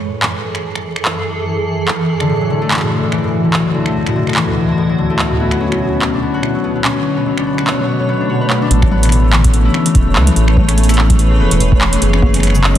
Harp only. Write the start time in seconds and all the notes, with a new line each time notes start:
2.20 D3
2.29 A2
2.41 F#3
2.50 D3
2.62 A3
2.82 A2
2.91 D3
3.03 A2
3.12 E3
3.24 A2
3.44 D3
3.54 A2
3.65 F#3
3.74 D3
3.86 A3
4.06 A2
4.16 D3
4.27 A2
4.36 E3
4.48 A2
4.69 D3
4.78 A2
4.89 F#3
4.98 D3
5.10 A3
5.31 A2
5.40 B3
5.51 F#3
5.60 C#4
5.72 F#3
5.93 B3
6.02 F#3
6.13 D4
6.22 B3
6.34 F#4
6.55 F#3
6.64 B3
6.75 F#3
6.85 C#4
6.96 F#3
7.17 B3
7.26 F#3
7.38 D4
7.47 B3
7.58 F#4
7.79 F#3
7.88 B3
8.00 F#3
8.09 B3
8.20 D4
8.29 F#4
8.41 B4
8.50 B4
8.62 D4
8.71 A3
8.82 E3
8.91 B3
9.03 E3
9.24 A3
9.33 E3
9.44 C#4
9.54 A3
9.65 E4
9.86 E3
9.95 A3
10.07 E3
10.16 B3
10.27 E3
10.48 A3
10.57 E3
10.69 C#4
10.78 A3
10.89 E4
11.10 E3
11.19 A3
11.31 E3
11.40 B3
11.51 E3
11.72 A3
11.81 E3
11.93 C#4
12.02 F#3
12.13 C#4
12.34 C#3
12.43 F#3
12.55 C#3
12.64 G#3